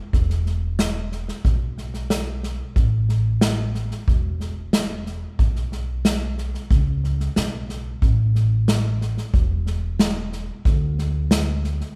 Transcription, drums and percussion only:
0.13 kick medium
0.13 snare soft
0.30 snare soft
0.46 snare soft
0.79 snare loud
0.79 hi-hat pedal medium
1.12 snare soft
1.28 snare soft
1.45 kick loud
1.45 snare soft
1.78 snare soft
1.94 snare soft
2.10 snare loud
2.10 hi-hat pedal medium
2.43 snare soft
2.76 kick medium
2.76 snare soft
3.09 snare soft
3.41 snare loud
3.41 hi-hat pedal medium
3.74 snare soft
3.91 snare soft
4.08 kick medium
4.08 snare soft
4.40 snare soft
4.73 snare loud
4.73 hi-hat pedal medium
5.06 snare soft
5.39 kick loud
5.39 snare soft
5.56 snare soft
5.72 snare soft
6.05 snare loud
6.05 hi-hat pedal medium
6.38 snare soft
6.54 snare soft
6.71 kick loud
6.71 snare soft
7.04 snare soft
7.20 snare soft
7.36 snare loud
7.36 hi-hat pedal medium
7.69 snare soft
8.02 kick loud
8.02 snare soft
8.35 snare soft
8.68 snare loud
8.68 hi-hat pedal medium
9.01 snare soft
9.17 snare soft
9.34 kick loud
9.34 snare soft
9.66 snare soft
9.99 snare loud
9.99 hi-hat pedal medium
10.32 snare soft
10.65 kick loud
10.65 snare soft
10.98 snare soft
11.31 snare loud
11.31 hi-hat pedal medium
11.64 snare soft
11.81 snare soft

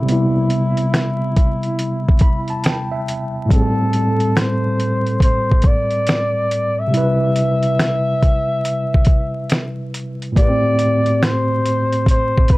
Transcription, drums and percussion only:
0.09 closed hi-hat medium
0.50 closed hi-hat medium
0.77 closed hi-hat soft
0.94 finger snap medium
0.94 snare loud
0.94 closed hi-hat medium
1.36 kick medium
1.36 closed hi-hat medium
1.63 closed hi-hat soft
1.79 closed hi-hat medium
2.09 kick medium
2.19 kick loud
2.19 closed hi-hat medium
2.48 closed hi-hat soft
2.64 finger snap medium
2.64 snare loud
2.64 closed hi-hat loud
3.08 closed hi-hat medium
3.51 kick loud
3.51 closed hi-hat medium
3.93 closed hi-hat medium
4.20 closed hi-hat soft
4.37 finger snap loud
4.37 snare loud
4.37 closed hi-hat medium
4.80 closed hi-hat medium
5.07 closed hi-hat soft
5.20 kick medium
5.20 closed hi-hat medium
5.52 kick medium
5.62 kick loud
5.62 closed hi-hat medium
5.91 closed hi-hat soft
6.07 finger snap loud
6.07 snare loud
6.07 closed hi-hat medium
6.51 closed hi-hat medium
6.94 closed hi-hat medium
7.36 closed hi-hat medium
7.63 closed hi-hat soft
7.79 finger snap loud
7.79 snare loud
7.79 closed hi-hat medium
8.22 kick loud
8.22 closed hi-hat medium
8.65 closed hi-hat medium
8.94 kick medium
9.05 kick medium
9.05 closed hi-hat medium
9.50 finger snap medium
9.50 snare loud
9.50 closed hi-hat medium
9.94 closed hi-hat medium
10.22 closed hi-hat soft
10.36 kick loud
10.36 closed hi-hat medium
10.79 closed hi-hat medium
11.06 closed hi-hat soft
11.23 finger snap medium
11.23 snare loud
11.23 closed hi-hat medium
11.65 closed hi-hat medium
11.92 closed hi-hat soft
12.06 kick medium
12.06 closed hi-hat medium
12.38 kick medium
12.48 kick medium
12.48 closed hi-hat medium

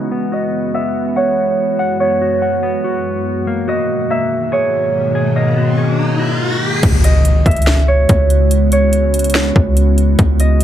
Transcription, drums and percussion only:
6.83 kick loud
6.83 closed hi-hat medium
6.83 crash medium
7.04 closed hi-hat medium
7.25 closed hi-hat medium
7.46 kick loud
7.46 closed hi-hat medium
7.51 closed hi-hat medium
7.57 closed hi-hat medium
7.62 closed hi-hat medium
7.67 snare loud
8.09 kick medium
8.09 closed hi-hat medium
8.30 closed hi-hat medium
8.51 closed hi-hat medium
8.72 closed hi-hat medium
8.93 closed hi-hat medium
9.14 closed hi-hat medium
9.19 closed hi-hat medium
9.24 closed hi-hat medium
9.30 closed hi-hat medium
9.35 snare loud
9.56 kick medium
9.77 closed hi-hat medium
9.98 closed hi-hat medium
10.19 kick loud
10.19 closed hi-hat medium
10.40 closed hi-hat medium
10.61 closed hi-hat medium

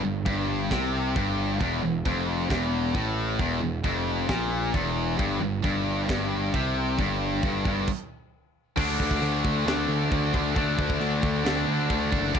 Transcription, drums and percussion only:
0.26 kick loud
0.26 china medium
0.71 kick loud
0.71 snare loud
0.71 china medium
1.16 kick loud
1.16 china medium
1.61 kick medium
1.61 china medium
2.06 kick loud
2.06 china medium
2.50 kick loud
2.50 snare loud
2.50 china medium
2.95 kick loud
2.95 china medium
3.39 kick loud
3.39 china medium
3.84 kick loud
3.84 china medium
4.29 kick loud
4.29 snare loud
4.29 china medium
4.74 kick loud
4.74 china medium
5.19 kick loud
5.19 china medium
5.64 kick loud
5.64 china medium
6.09 kick loud
6.09 snare loud
6.09 china medium
6.54 kick loud
6.54 china soft
6.99 kick medium
6.99 china soft
7.43 kick loud
7.43 china medium
7.65 kick loud
7.88 kick loud
7.88 crash medium
8.77 kick loud
8.77 crash loud
8.77 china medium
9.00 kick medium
9.11 kick medium
9.22 china medium
9.45 kick medium
9.68 snare loud
9.68 china medium
10.12 kick medium
10.12 china medium
10.34 kick medium
10.56 kick loud
10.56 china medium
10.79 kick medium
10.90 kick medium
11.01 china medium
11.23 kick medium
11.46 snare loud
11.46 china medium
11.90 kick medium
11.90 china medium
12.12 kick medium
12.35 kick loud
12.35 china medium

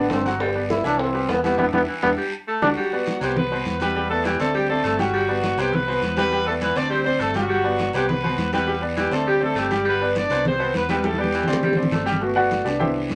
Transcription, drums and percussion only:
0.10 high bongo medium
0.10 low bongo medium
0.10 high conga medium
0.10 short guiro medium
0.25 high bongo soft
0.25 high conga medium
0.25 short guiro medium
0.40 high bongo medium
0.40 high conga soft
0.40 long guiro medium
0.55 high conga soft
0.70 high bongo medium
0.70 high conga medium
0.70 short guiro medium
0.84 high conga soft
0.84 short guiro medium
0.99 high bongo medium
0.99 high conga soft
0.99 long guiro medium
1.15 high conga soft
1.29 high bongo medium
1.29 low bongo medium
1.29 high conga medium
1.29 short guiro medium
1.44 high conga medium
1.44 short guiro medium
1.58 low bongo loud
1.58 high conga loud
1.58 long guiro loud
1.73 low bongo loud
1.73 high conga loud
1.73 long guiro loud
2.02 low bongo loud
2.02 high conga loud
2.02 long guiro loud
2.62 low bongo loud
2.62 high conga loud
2.62 long guiro medium
2.76 cowbell loud
2.76 high conga soft
2.76 long guiro medium
2.92 high conga soft
3.06 cowbell medium
3.06 high conga medium
3.06 short guiro medium
3.21 short guiro medium
3.36 cowbell loud
3.36 high conga soft
3.36 low conga medium
3.36 long guiro medium
3.51 high conga soft
3.65 cowbell medium
3.65 high conga medium
3.65 short guiro medium
3.80 cowbell medium
3.80 high conga medium
3.80 short guiro medium
3.95 cowbell loud
3.95 high conga soft
3.95 long guiro medium
4.11 high conga soft
4.25 cowbell medium
4.25 high conga medium
4.25 short guiro medium
4.40 high conga soft
4.40 short guiro medium
4.54 cowbell loud
4.54 high conga soft
4.54 long guiro medium
4.70 high conga soft
4.84 cowbell medium
4.84 high conga soft
4.84 short guiro medium
4.99 cowbell medium
4.99 high conga medium
4.99 short guiro medium
5.14 cowbell loud
5.14 high conga soft
5.14 long guiro medium
5.29 high conga soft
5.44 cowbell medium
5.44 high conga medium
5.44 short guiro medium
5.58 short guiro medium
5.72 cowbell loud
5.72 high conga soft
5.72 low conga medium
5.72 long guiro medium
5.88 high conga soft
6.02 cowbell medium
6.02 high conga medium
6.02 short guiro medium
6.17 cowbell medium
6.17 high conga medium
6.17 short guiro medium
6.32 cowbell loud
6.32 high conga soft
6.32 long guiro medium
6.47 high conga soft
6.61 cowbell medium
6.61 high conga medium
6.61 short guiro medium
6.76 high conga soft
6.76 short guiro medium
6.91 cowbell loud
6.91 high conga soft
6.91 long guiro medium
7.06 high conga soft
7.20 cowbell medium
7.20 high conga soft
7.20 short guiro medium
7.34 cowbell medium
7.34 high conga medium
7.34 short guiro medium
7.49 cowbell loud
7.49 high conga soft
7.49 long guiro medium
7.65 high conga soft
7.79 cowbell medium
7.79 high conga medium
7.79 short guiro medium
7.93 short guiro medium
8.09 cowbell loud
8.09 high conga soft
8.09 low conga medium
8.09 long guiro medium
8.24 high conga soft
8.24 low conga medium
8.38 cowbell medium
8.38 high conga medium
8.38 short guiro medium
8.53 cowbell medium
8.53 high conga medium
8.53 short guiro medium
8.67 cowbell loud
8.67 high conga soft
8.67 long guiro medium
8.83 high conga soft
8.97 cowbell medium
8.97 high conga medium
8.97 short guiro medium
9.12 high conga soft
9.12 short guiro medium
9.26 cowbell loud
9.26 high conga soft
9.26 long guiro medium
9.42 high conga soft
9.56 cowbell medium
9.56 high conga soft
9.56 short guiro medium
9.71 cowbell medium
9.71 high conga medium
9.71 short guiro medium
9.85 cowbell loud
9.85 high conga soft
9.85 long guiro medium
10.01 high conga soft
10.15 cowbell medium
10.15 high conga loud
10.15 short guiro medium
10.30 short guiro medium
10.45 cowbell loud
10.45 high conga soft
10.45 low conga medium
10.45 long guiro medium
10.60 high conga soft
10.74 cowbell medium
10.74 high conga medium
10.74 short guiro medium
10.89 cowbell medium
10.89 high conga medium
10.89 short guiro medium
11.03 cowbell loud
11.03 high conga medium
11.03 long guiro medium
11.14 high conga medium
11.24 high conga loud
11.33 cowbell medium
11.33 short guiro medium
11.43 low conga medium
11.48 short guiro medium
11.53 low conga medium
11.62 cowbell loud
11.62 low conga medium
11.62 long guiro medium
11.73 low conga medium
11.82 low conga medium
11.91 cowbell medium
11.91 low conga medium
11.91 short guiro medium
12.06 cowbell medium
12.06 short guiro medium
12.12 low conga medium
12.21 high conga soft
12.21 long guiro medium
12.36 high conga soft
12.51 high conga medium
12.51 short guiro medium
12.66 short guiro medium
12.80 high conga soft
12.80 low conga medium
12.80 long guiro medium
12.96 high conga soft
13.09 high conga medium
13.09 short guiro medium

